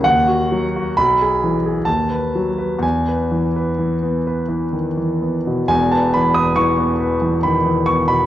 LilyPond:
<<
  \new Staff \with { instrumentName = "Grand piano" } { \time 3/4 \key e \major \tempo 4 = 65 fis''4 b''4 a''4 | gis''2 r4 | gis''16 a''16 b''16 dis'''16 cis'''4 b''8 cis'''16 b''16 | }
  \new Staff \with { instrumentName = "Grand piano" } { \clef bass \time 3/4 \key e \major dis,16 fis'16 fis16 fis'16 b,,16 gis'16 e16 gis'16 dis,16 b'16 fis16 b'16 | e,16 b'16 e16 b'16 e16 b16 b'16 e16 dis16 e16 b16 b,16 | <e,, e,>16 b'16 e16 b'16 e16 b16 b'16 e16 dis16 e16 b16 b,16 | }
>>